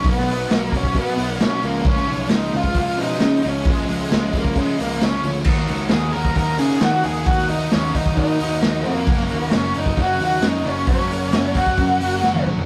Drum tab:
CC |----------------|----------------|----------------|x---------------|
HH |o-o-o-o-o-o-o-o-|o-o-o-o-o-o-o-o-|o-o-o-o-o-o-o-o-|--o-o-o-o-o-o-o-|
SD |-o--o-------o---|-o--o-o-----o---|-o--o-------o---|-o--o-------o---|
T1 |----------------|----------------|----------------|----------------|
T2 |----------------|----------------|----------------|----------------|
FT |----------------|----------------|----------------|----------------|
BD |o-----ooo-------|o------oo-------|o-----ooo-------|o------oo-------|

CC |----------------|----------------|----------------|
HH |o-o-o-o-o-o-o-o-|o-o-o-o-o-o-o-o-|o-o-o-o-o-o-----|
SD |-o--o-o-----o---|-o--o-------o---|-o--o-o-----o---|
T1 |----------------|----------------|-------------o--|
T2 |----------------|----------------|--------------o-|
FT |----------------|----------------|---------------o|
BD |o-----ooo-------|o------oo-------|o-----ooo-------|